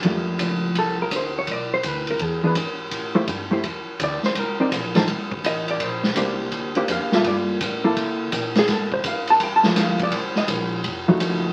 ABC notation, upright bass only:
X:1
M:4/4
L:1/8
Q:"Swing" 1/4=166
K:F
V:1 name="Upright bass" clef=bass
F,,2 _D,,2 C,,2 =D,,2 | =B,,,2 D,,2 E,,2 ^G,,2 | A,,2 G,,2 E,, z D,, z | C,,2 B,,,2 F,,,2 A,,,2 |
B,,,2 C,,2 D,,2 (3F,, D,, B,,, | G,,2 A,,2 C,2 B,,2 | A,,2 _A,,2 G,,2 D,,2 | C,,2 B,,,2 F,,,2 _G,,,2 |]